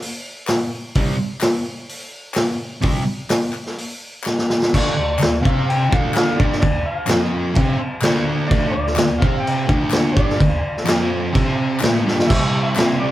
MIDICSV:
0, 0, Header, 1, 5, 480
1, 0, Start_track
1, 0, Key_signature, -1, "minor"
1, 0, Tempo, 472813
1, 965, Time_signature, 4, 2, 24, 8
1, 13313, End_track
2, 0, Start_track
2, 0, Title_t, "Electric slide guitar"
2, 0, Program_c, 0, 29
2, 4821, Note_on_c, 0, 74, 86
2, 5033, Note_off_c, 0, 74, 0
2, 5046, Note_on_c, 0, 74, 85
2, 5495, Note_off_c, 0, 74, 0
2, 5499, Note_on_c, 0, 77, 88
2, 5727, Note_off_c, 0, 77, 0
2, 5777, Note_on_c, 0, 79, 107
2, 6006, Note_on_c, 0, 77, 94
2, 6010, Note_off_c, 0, 79, 0
2, 6230, Note_off_c, 0, 77, 0
2, 6242, Note_on_c, 0, 77, 99
2, 6462, Note_on_c, 0, 74, 82
2, 6483, Note_off_c, 0, 77, 0
2, 6685, Note_off_c, 0, 74, 0
2, 6697, Note_on_c, 0, 74, 89
2, 6950, Note_off_c, 0, 74, 0
2, 6962, Note_on_c, 0, 77, 87
2, 7582, Note_off_c, 0, 77, 0
2, 7582, Note_on_c, 0, 76, 87
2, 7876, Note_off_c, 0, 76, 0
2, 8605, Note_on_c, 0, 74, 91
2, 8819, Note_off_c, 0, 74, 0
2, 8832, Note_on_c, 0, 74, 88
2, 9324, Note_on_c, 0, 77, 94
2, 9348, Note_off_c, 0, 74, 0
2, 9538, Note_off_c, 0, 77, 0
2, 9542, Note_on_c, 0, 79, 107
2, 10274, Note_on_c, 0, 74, 85
2, 10313, Note_off_c, 0, 79, 0
2, 11941, Note_off_c, 0, 74, 0
2, 12459, Note_on_c, 0, 76, 90
2, 12807, Note_off_c, 0, 76, 0
2, 12823, Note_on_c, 0, 76, 101
2, 13195, Note_off_c, 0, 76, 0
2, 13199, Note_on_c, 0, 74, 81
2, 13313, Note_off_c, 0, 74, 0
2, 13313, End_track
3, 0, Start_track
3, 0, Title_t, "Distorted electric guitar"
3, 0, Program_c, 1, 30
3, 973, Note_on_c, 1, 48, 94
3, 979, Note_on_c, 1, 55, 98
3, 983, Note_on_c, 1, 60, 93
3, 1161, Note_off_c, 1, 48, 0
3, 1164, Note_off_c, 1, 55, 0
3, 1165, Note_off_c, 1, 60, 0
3, 2854, Note_on_c, 1, 48, 89
3, 2868, Note_on_c, 1, 55, 88
3, 2875, Note_on_c, 1, 60, 90
3, 3057, Note_off_c, 1, 48, 0
3, 3064, Note_off_c, 1, 55, 0
3, 3068, Note_off_c, 1, 60, 0
3, 4803, Note_on_c, 1, 38, 97
3, 4807, Note_on_c, 1, 50, 97
3, 5008, Note_off_c, 1, 38, 0
3, 5020, Note_on_c, 1, 38, 68
3, 5032, Note_off_c, 1, 50, 0
3, 5217, Note_off_c, 1, 38, 0
3, 5270, Note_on_c, 1, 38, 80
3, 5462, Note_off_c, 1, 38, 0
3, 5507, Note_on_c, 1, 48, 89
3, 5508, Note_on_c, 1, 60, 104
3, 5981, Note_off_c, 1, 48, 0
3, 5981, Note_off_c, 1, 60, 0
3, 5988, Note_on_c, 1, 38, 84
3, 5989, Note_on_c, 1, 50, 87
3, 6461, Note_off_c, 1, 38, 0
3, 6462, Note_off_c, 1, 50, 0
3, 6474, Note_on_c, 1, 43, 90
3, 6487, Note_on_c, 1, 55, 92
3, 6704, Note_off_c, 1, 43, 0
3, 6711, Note_off_c, 1, 55, 0
3, 6722, Note_on_c, 1, 38, 75
3, 6908, Note_off_c, 1, 38, 0
3, 7167, Note_on_c, 1, 41, 108
3, 7183, Note_on_c, 1, 53, 97
3, 7651, Note_off_c, 1, 41, 0
3, 7657, Note_on_c, 1, 48, 98
3, 7659, Note_off_c, 1, 53, 0
3, 7677, Note_on_c, 1, 60, 103
3, 7896, Note_off_c, 1, 48, 0
3, 7906, Note_off_c, 1, 60, 0
3, 8143, Note_on_c, 1, 38, 95
3, 8145, Note_on_c, 1, 50, 104
3, 8600, Note_off_c, 1, 38, 0
3, 8612, Note_on_c, 1, 38, 100
3, 8619, Note_off_c, 1, 50, 0
3, 8631, Note_on_c, 1, 50, 111
3, 8855, Note_off_c, 1, 38, 0
3, 8864, Note_off_c, 1, 50, 0
3, 8868, Note_on_c, 1, 38, 72
3, 9062, Note_off_c, 1, 38, 0
3, 9105, Note_on_c, 1, 38, 79
3, 9301, Note_off_c, 1, 38, 0
3, 9337, Note_on_c, 1, 48, 101
3, 9354, Note_on_c, 1, 60, 112
3, 9815, Note_off_c, 1, 48, 0
3, 9819, Note_on_c, 1, 38, 85
3, 9828, Note_off_c, 1, 60, 0
3, 9833, Note_on_c, 1, 50, 101
3, 10301, Note_off_c, 1, 38, 0
3, 10308, Note_off_c, 1, 50, 0
3, 10312, Note_on_c, 1, 43, 88
3, 10320, Note_on_c, 1, 55, 95
3, 10534, Note_off_c, 1, 43, 0
3, 10538, Note_on_c, 1, 38, 73
3, 10552, Note_off_c, 1, 55, 0
3, 10741, Note_off_c, 1, 38, 0
3, 11011, Note_on_c, 1, 41, 106
3, 11026, Note_on_c, 1, 53, 109
3, 11500, Note_off_c, 1, 41, 0
3, 11504, Note_on_c, 1, 48, 98
3, 11506, Note_off_c, 1, 53, 0
3, 11510, Note_on_c, 1, 60, 116
3, 11986, Note_off_c, 1, 48, 0
3, 11990, Note_off_c, 1, 60, 0
3, 11990, Note_on_c, 1, 45, 97
3, 12004, Note_on_c, 1, 57, 102
3, 12226, Note_off_c, 1, 45, 0
3, 12230, Note_off_c, 1, 57, 0
3, 12230, Note_on_c, 1, 43, 91
3, 12234, Note_on_c, 1, 55, 98
3, 12449, Note_off_c, 1, 43, 0
3, 12453, Note_on_c, 1, 48, 93
3, 12462, Note_off_c, 1, 55, 0
3, 12474, Note_on_c, 1, 55, 112
3, 12497, Note_on_c, 1, 60, 104
3, 12945, Note_off_c, 1, 48, 0
3, 12949, Note_on_c, 1, 48, 76
3, 12967, Note_off_c, 1, 55, 0
3, 12971, Note_on_c, 1, 55, 83
3, 12988, Note_off_c, 1, 60, 0
3, 12992, Note_on_c, 1, 60, 93
3, 13183, Note_off_c, 1, 60, 0
3, 13196, Note_on_c, 1, 60, 70
3, 13221, Note_off_c, 1, 55, 0
3, 13233, Note_on_c, 1, 55, 65
3, 13313, Note_off_c, 1, 48, 0
3, 13313, Note_off_c, 1, 55, 0
3, 13313, Note_off_c, 1, 60, 0
3, 13313, End_track
4, 0, Start_track
4, 0, Title_t, "Muted distorted electric guitar strokes"
4, 7909, Note_on_c, 9, 29, 54
4, 8010, Note_off_c, 9, 29, 0
4, 13313, End_track
5, 0, Start_track
5, 0, Title_t, "Drums"
5, 22, Note_on_c, 9, 46, 61
5, 124, Note_off_c, 9, 46, 0
5, 481, Note_on_c, 9, 39, 100
5, 488, Note_on_c, 9, 46, 58
5, 493, Note_on_c, 9, 38, 106
5, 582, Note_off_c, 9, 39, 0
5, 589, Note_off_c, 9, 46, 0
5, 595, Note_off_c, 9, 38, 0
5, 964, Note_on_c, 9, 46, 53
5, 971, Note_on_c, 9, 36, 104
5, 1066, Note_off_c, 9, 46, 0
5, 1073, Note_off_c, 9, 36, 0
5, 1428, Note_on_c, 9, 39, 103
5, 1441, Note_on_c, 9, 46, 60
5, 1446, Note_on_c, 9, 38, 115
5, 1529, Note_off_c, 9, 39, 0
5, 1542, Note_off_c, 9, 46, 0
5, 1547, Note_off_c, 9, 38, 0
5, 1921, Note_on_c, 9, 46, 53
5, 2023, Note_off_c, 9, 46, 0
5, 2378, Note_on_c, 9, 39, 96
5, 2393, Note_on_c, 9, 46, 56
5, 2398, Note_on_c, 9, 38, 116
5, 2480, Note_off_c, 9, 39, 0
5, 2495, Note_off_c, 9, 46, 0
5, 2500, Note_off_c, 9, 38, 0
5, 2863, Note_on_c, 9, 46, 56
5, 2879, Note_on_c, 9, 36, 107
5, 2965, Note_off_c, 9, 46, 0
5, 2981, Note_off_c, 9, 36, 0
5, 3346, Note_on_c, 9, 46, 60
5, 3351, Note_on_c, 9, 38, 111
5, 3352, Note_on_c, 9, 39, 95
5, 3448, Note_off_c, 9, 46, 0
5, 3453, Note_off_c, 9, 38, 0
5, 3454, Note_off_c, 9, 39, 0
5, 3582, Note_on_c, 9, 39, 66
5, 3683, Note_off_c, 9, 39, 0
5, 3717, Note_on_c, 9, 38, 31
5, 3818, Note_off_c, 9, 38, 0
5, 3841, Note_on_c, 9, 46, 60
5, 3942, Note_off_c, 9, 46, 0
5, 4301, Note_on_c, 9, 39, 98
5, 4327, Note_on_c, 9, 38, 64
5, 4402, Note_off_c, 9, 39, 0
5, 4429, Note_off_c, 9, 38, 0
5, 4452, Note_on_c, 9, 38, 65
5, 4554, Note_off_c, 9, 38, 0
5, 4568, Note_on_c, 9, 38, 87
5, 4670, Note_off_c, 9, 38, 0
5, 4695, Note_on_c, 9, 38, 84
5, 4797, Note_off_c, 9, 38, 0
5, 4813, Note_on_c, 9, 36, 100
5, 4815, Note_on_c, 9, 49, 114
5, 4815, Note_on_c, 9, 57, 54
5, 4915, Note_off_c, 9, 36, 0
5, 4917, Note_off_c, 9, 49, 0
5, 4917, Note_off_c, 9, 57, 0
5, 5268, Note_on_c, 9, 39, 92
5, 5300, Note_on_c, 9, 57, 60
5, 5305, Note_on_c, 9, 38, 114
5, 5370, Note_off_c, 9, 39, 0
5, 5402, Note_off_c, 9, 57, 0
5, 5407, Note_off_c, 9, 38, 0
5, 5537, Note_on_c, 9, 36, 101
5, 5638, Note_off_c, 9, 36, 0
5, 5786, Note_on_c, 9, 57, 60
5, 5888, Note_off_c, 9, 57, 0
5, 6015, Note_on_c, 9, 36, 110
5, 6117, Note_off_c, 9, 36, 0
5, 6235, Note_on_c, 9, 39, 99
5, 6253, Note_on_c, 9, 57, 62
5, 6259, Note_on_c, 9, 38, 118
5, 6337, Note_off_c, 9, 39, 0
5, 6355, Note_off_c, 9, 57, 0
5, 6360, Note_off_c, 9, 38, 0
5, 6496, Note_on_c, 9, 36, 103
5, 6597, Note_off_c, 9, 36, 0
5, 6623, Note_on_c, 9, 38, 33
5, 6721, Note_on_c, 9, 57, 59
5, 6725, Note_off_c, 9, 38, 0
5, 6728, Note_on_c, 9, 36, 89
5, 6822, Note_off_c, 9, 57, 0
5, 6830, Note_off_c, 9, 36, 0
5, 7178, Note_on_c, 9, 39, 107
5, 7196, Note_on_c, 9, 57, 62
5, 7202, Note_on_c, 9, 38, 118
5, 7280, Note_off_c, 9, 39, 0
5, 7298, Note_off_c, 9, 57, 0
5, 7303, Note_off_c, 9, 38, 0
5, 7667, Note_on_c, 9, 57, 66
5, 7680, Note_on_c, 9, 36, 103
5, 7768, Note_off_c, 9, 57, 0
5, 7781, Note_off_c, 9, 36, 0
5, 8137, Note_on_c, 9, 39, 106
5, 8153, Note_on_c, 9, 57, 61
5, 8158, Note_on_c, 9, 38, 111
5, 8239, Note_off_c, 9, 39, 0
5, 8254, Note_off_c, 9, 57, 0
5, 8259, Note_off_c, 9, 38, 0
5, 8640, Note_on_c, 9, 36, 106
5, 8644, Note_on_c, 9, 57, 60
5, 8742, Note_off_c, 9, 36, 0
5, 8745, Note_off_c, 9, 57, 0
5, 9005, Note_on_c, 9, 38, 34
5, 9095, Note_on_c, 9, 39, 105
5, 9106, Note_off_c, 9, 38, 0
5, 9115, Note_on_c, 9, 57, 57
5, 9120, Note_on_c, 9, 38, 114
5, 9197, Note_off_c, 9, 39, 0
5, 9217, Note_off_c, 9, 57, 0
5, 9222, Note_off_c, 9, 38, 0
5, 9363, Note_on_c, 9, 36, 106
5, 9464, Note_off_c, 9, 36, 0
5, 9616, Note_on_c, 9, 57, 57
5, 9717, Note_off_c, 9, 57, 0
5, 9838, Note_on_c, 9, 36, 106
5, 9940, Note_off_c, 9, 36, 0
5, 10056, Note_on_c, 9, 39, 100
5, 10076, Note_on_c, 9, 57, 60
5, 10081, Note_on_c, 9, 38, 109
5, 10157, Note_off_c, 9, 39, 0
5, 10177, Note_off_c, 9, 57, 0
5, 10182, Note_off_c, 9, 38, 0
5, 10322, Note_on_c, 9, 36, 103
5, 10423, Note_off_c, 9, 36, 0
5, 10456, Note_on_c, 9, 38, 32
5, 10557, Note_off_c, 9, 38, 0
5, 10563, Note_on_c, 9, 36, 94
5, 10568, Note_on_c, 9, 57, 58
5, 10664, Note_off_c, 9, 36, 0
5, 10669, Note_off_c, 9, 57, 0
5, 10936, Note_on_c, 9, 38, 35
5, 11031, Note_on_c, 9, 39, 100
5, 11038, Note_off_c, 9, 38, 0
5, 11047, Note_on_c, 9, 57, 68
5, 11052, Note_on_c, 9, 38, 117
5, 11133, Note_off_c, 9, 39, 0
5, 11148, Note_off_c, 9, 57, 0
5, 11153, Note_off_c, 9, 38, 0
5, 11525, Note_on_c, 9, 36, 106
5, 11526, Note_on_c, 9, 57, 64
5, 11626, Note_off_c, 9, 36, 0
5, 11628, Note_off_c, 9, 57, 0
5, 11975, Note_on_c, 9, 39, 97
5, 12012, Note_on_c, 9, 57, 62
5, 12017, Note_on_c, 9, 38, 114
5, 12077, Note_off_c, 9, 39, 0
5, 12113, Note_off_c, 9, 57, 0
5, 12119, Note_off_c, 9, 38, 0
5, 12265, Note_on_c, 9, 38, 64
5, 12366, Note_off_c, 9, 38, 0
5, 12381, Note_on_c, 9, 38, 83
5, 12482, Note_off_c, 9, 38, 0
5, 12489, Note_on_c, 9, 36, 117
5, 12492, Note_on_c, 9, 49, 115
5, 12492, Note_on_c, 9, 57, 62
5, 12590, Note_off_c, 9, 36, 0
5, 12594, Note_off_c, 9, 49, 0
5, 12594, Note_off_c, 9, 57, 0
5, 12950, Note_on_c, 9, 39, 96
5, 12974, Note_on_c, 9, 57, 66
5, 12979, Note_on_c, 9, 38, 119
5, 13051, Note_off_c, 9, 39, 0
5, 13076, Note_off_c, 9, 57, 0
5, 13081, Note_off_c, 9, 38, 0
5, 13313, End_track
0, 0, End_of_file